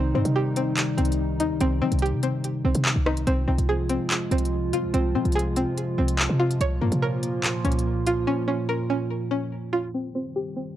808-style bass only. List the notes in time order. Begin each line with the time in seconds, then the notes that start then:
Already playing: C2
0.15 G2
0.25 C3
0.98 C2
1.40 D#2
1.50 C2
1.60 C2
1.81 G3
1.92 C2
2.12 C3
2.65 C2
2.75 C3
2.96 C2
3.27 C2
3.48 C2
3.58 C2
4.31 C2
4.73 G3
4.83 C2
4.94 C2
5.15 C3
5.25 C2
5.56 C#2
5.98 C2
6.29 C3
6.60 C2
6.81 G2
6.92 C3
7.65 C2